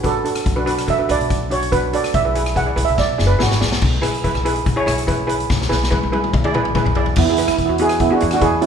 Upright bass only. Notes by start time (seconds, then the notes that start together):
Already playing: A1
0.46 B1
1.09 B1
1.19 B1
2.14 B1
2.76 B1
2.89 B1
3.19 F#1
3.40 G#1
3.62 B1
3.82 B1
4.03 B1
4.34 B1
4.66 B1
4.87 B1
5.20 B1
5.50 B1
5.71 B1
6.03 B1
6.34 B1
6.54 B1
6.85 B1
7.17 E2
7.48 E3
7.69 E2
8.22 E2
8.41 E2